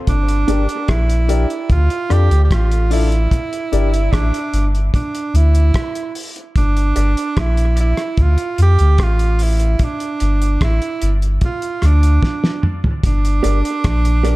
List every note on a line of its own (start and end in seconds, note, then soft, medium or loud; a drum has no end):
0.07 0.45 G1 medium
0.07 0.91 D4 medium
0.07 kick medium
0.07 closed hi-hat medium
0.29 closed hi-hat soft
0.47 0.67 G1 medium
0.47 0.64 D4 medium
0.47 0.63 D4 medium
0.47 0.64 G4 medium
0.47 0.64 A#4 medium
0.47 0.65 D5 medium
0.47 closed hi-hat medium
0.69 closed hi-hat soft
0.88 1.46 A#1 medium
0.88 1.70 E4 loud
0.88 kick loud
0.88 cross-stick medium
0.88 closed hi-hat medium
1.10 closed hi-hat soft
1.28 1.45 D4 medium
1.28 1.45 G4 medium
1.28 1.45 A#4 medium
1.28 1.46 D5 medium
1.28 closed hi-hat medium
1.50 closed hi-hat soft
1.70 1.89 D2 loud
1.70 2.14 F4 medium
1.70 kick loud
1.70 closed hi-hat medium
1.90 closed hi-hat soft
2.09 2.29 F2 medium
2.09 2.26 D4 medium
2.09 2.26 F4 medium
2.09 2.44 G4 loud
2.09 2.27 A4 medium
2.09 2.27 D5 loud
2.09 cross-stick medium
2.09 closed hi-hat medium
2.31 2.49 D2 medium
2.31 closed hi-hat soft
2.44 2.54 G4 medium
2.51 3.28 A1 medium
2.51 2.92 F4 medium
2.51 kick loud
2.51 cross-stick loud
2.51 closed hi-hat medium
2.72 2.79 A4 soft
2.72 2.79 D5 soft
2.72 closed hi-hat soft
2.90 3.07 D4 medium
2.90 4.14 E4 medium
2.90 3.07 F4 medium
2.90 3.07 A4 medium
2.90 3.08 D5 medium
2.90 open hi-hat medium
3.12 closed hi-hat medium
3.31 kick medium
3.31 closed hi-hat medium
3.53 closed hi-hat soft
3.72 4.10 G1 medium
3.72 3.88 D4 medium
3.72 3.88 G4 medium
3.72 3.89 A#4 medium
3.72 3.89 D5 medium
3.72 closed hi-hat medium
3.94 closed hi-hat medium
4.13 4.32 A1 medium
4.13 4.67 D4 medium
4.13 kick loud
4.13 cross-stick medium
4.13 closed hi-hat medium
4.34 closed hi-hat soft
4.53 4.91 G1 medium
4.53 closed hi-hat medium
4.75 closed hi-hat soft
4.94 5.38 D4 medium
4.94 kick loud
4.94 closed hi-hat medium
5.15 closed hi-hat soft
5.34 5.72 D2 medium
5.34 6.16 E4 medium
5.34 closed hi-hat medium
5.55 closed hi-hat soft
5.74 kick medium
5.74 cross-stick loud
5.74 closed hi-hat medium
5.95 closed hi-hat soft
6.15 open hi-hat medium
6.36 closed hi-hat medium
6.56 6.94 G1 loud
6.56 7.42 D4 medium
6.56 kick loud
6.56 closed hi-hat medium
6.77 closed hi-hat soft
6.96 7.15 G1 medium
6.96 7.11 G4 medium
6.96 7.11 A#4 medium
6.96 7.12 D5 medium
6.96 closed hi-hat medium
7.17 closed hi-hat medium
7.37 7.94 A#1 medium
7.37 7.79 E4 medium
7.37 kick loud
7.37 cross-stick medium
7.37 closed hi-hat medium
7.57 closed hi-hat soft
7.76 7.92 G4 medium
7.76 7.92 A#4 medium
7.76 7.93 D5 medium
7.76 closed hi-hat medium
7.80 8.23 E4 medium
7.97 cross-stick medium
7.97 closed hi-hat soft
8.17 8.37 D2 medium
8.17 kick loud
8.17 closed hi-hat medium
8.22 8.60 F4 medium
8.38 closed hi-hat soft
8.56 8.77 F2 medium
8.56 8.73 F4 medium
8.56 8.73 A4 medium
8.56 8.73 D5 medium
8.56 closed hi-hat medium
8.63 9.05 G4 loud
8.79 8.98 D2 medium
8.79 closed hi-hat soft
8.98 9.76 A1 loud
8.98 kick loud
8.98 cross-stick medium
8.98 closed hi-hat medium
9.03 9.44 F4 loud
9.19 closed hi-hat soft
9.38 9.54 F4 medium
9.38 9.54 A4 medium
9.38 9.55 D5 medium
9.38 open hi-hat medium
9.42 9.86 E4 medium
9.59 closed hi-hat soft
9.79 kick loud
9.79 closed hi-hat medium
9.85 10.63 D4 medium
10.00 closed hi-hat soft
10.20 10.58 G1 medium
10.20 10.35 G4 medium
10.20 10.36 G4 medium
10.20 10.36 A#4 medium
10.20 10.37 A#4 medium
10.20 10.36 D5 medium
10.20 10.37 D5 medium
10.20 closed hi-hat medium
10.42 closed hi-hat medium
10.61 10.80 A1 medium
10.61 11.13 E4 medium
10.61 kick loud
10.61 cross-stick medium
10.61 closed hi-hat medium
10.82 closed hi-hat soft
11.00 11.39 G1 medium
11.00 11.17 D4 medium
11.00 11.16 G4 medium
11.00 11.17 G4 medium
11.00 11.17 A#4 medium
11.00 11.17 D5 medium
11.00 closed hi-hat medium
11.21 muted clean electric guitar stroke soft
11.21 closed hi-hat soft
11.41 11.87 F4 medium
11.41 kick loud
11.41 closed hi-hat medium
11.62 closed hi-hat soft
11.81 12.20 D2 medium
11.81 11.98 D4 medium
11.81 11.98 F4 medium
11.81 11.97 F4 medium
11.81 11.98 A4 medium
11.81 11.97 A4 medium
11.81 11.98 D5 medium
11.81 11.97 D5 medium
11.81 cross-stick medium
11.81 closed hi-hat medium
11.86 12.65 D4 medium
12.03 closed hi-hat soft
12.23 kick medium
12.23 snare soft
12.44 snare medium
12.62 12.79 D4 medium
12.62 12.78 F4 medium
12.62 12.79 F4 medium
12.62 12.78 A4 medium
12.62 12.79 A4 medium
12.62 12.78 D5 medium
12.62 12.79 D5 medium
12.62 mid tom medium
12.84 floor tom medium
13.04 13.41 G1 medium
13.04 14.36 D4 medium
13.04 kick loud
13.04 closed hi-hat medium
13.25 closed hi-hat soft
13.43 13.63 G1 medium
13.43 13.59 G4 medium
13.43 13.59 A#4 medium
13.43 13.59 D5 medium
13.43 closed hi-hat medium
13.65 closed hi-hat medium
13.84 14.36 A#1 medium
13.84 kick loud
13.84 cross-stick loud
13.84 closed hi-hat medium
14.05 closed hi-hat medium
14.23 14.36 G4 medium
14.23 14.36 A#4 medium
14.23 14.36 D5 medium
14.23 closed hi-hat medium